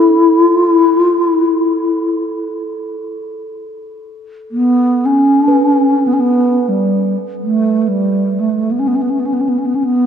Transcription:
0.00 0.47 E4 medium
0.00 7.75 A4 medium
0.47 0.72 F4 medium
0.72 0.99 E4 medium
0.99 1.24 F4 medium
1.24 2.15 E4 medium
4.51 5.07 B3 medium
5.05 6.08 C#4 medium
5.48 10.06 B4 medium
6.07 6.15 B3 medium
6.13 6.21 C#4 medium
6.20 6.70 B3 medium
6.69 7.16 G3 medium
7.43 7.82 A3 medium
7.82 7.89 A3 medium
7.88 8.41 G3 medium
8.39 8.73 A3 medium
8.71 8.81 B3 medium
8.79 8.89 C#4 medium
8.87 8.97 B3 medium
8.95 9.03 C#4 medium
9.01 9.11 B3 medium
9.10 9.21 C#4 soft
9.19 9.27 B3 medium
9.25 9.35 C#4 medium
9.33 9.42 B3 medium
9.40 9.50 C#4 medium
9.49 9.60 B3 medium
9.58 9.67 C#4 medium
9.65 9.76 B3 medium
9.75 9.85 C#4 medium
9.84 10.06 B3 medium

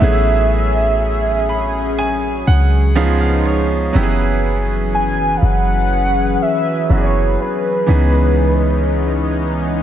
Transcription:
0.00 2.43 A1 loud
0.00 2.92 F#3 medium
0.00 2.92 A3 medium
0.00 2.92 B3 medium
0.00 2.93 C#4 medium
0.00 2.93 E4 medium
0.00 2.93 G#4 medium
0.00 2.72 E5 medium
1.49 1.95 B5 medium
1.99 2.44 G#5 medium
2.47 3.91 C#2 loud
2.47 2.93 F#5 medium
2.95 3.94 C#3 medium
2.95 3.94 F3 medium
2.95 3.94 G#3 medium
2.95 3.92 B3 medium
2.95 3.94 B3 medium
2.95 3.93 C#4 medium
2.95 3.94 D#4 medium
2.95 3.95 D#4 medium
2.95 3.94 F4 medium
2.95 3.95 G#4 medium
2.95 3.19 F5 medium
3.21 3.44 F5 medium
3.46 3.91 C#5 medium
3.93 5.38 F#1 loud
3.93 9.83 E3 medium
3.93 6.85 F#3 medium
3.93 7.84 F#3 medium
3.93 6.85 B3 medium
3.93 6.86 C#4 medium
3.93 7.84 C#4 medium
3.93 6.86 E4 medium
3.93 4.02 G4 medium
3.93 7.84 G#4 medium
3.93 7.84 B4 medium
4.03 6.90 G#4 medium
4.94 5.38 G#5 loud
5.37 5.45 F5 medium
5.42 6.37 F#1 loud
5.42 6.43 F#5 loud
6.42 6.93 E5 medium
6.89 7.37 F#1 loud
6.89 7.88 F#3 soft
6.89 7.86 B3 soft
6.89 7.87 C#4 soft
6.89 7.88 E4 soft
6.89 6.97 F#4 soft
6.89 7.40 C#5 medium
6.97 7.89 G#4 medium
7.41 9.32 B4 medium
7.86 9.83 C#2 loud
7.86 9.83 E3 medium
7.86 9.83 G#3 medium
7.86 9.80 B3 medium
7.86 9.83 B3 medium
7.86 9.83 C#4 medium
7.86 9.81 C#4 medium
7.86 9.83 D#4 medium
7.86 9.81 D#4 medium
7.86 9.82 G#4 medium

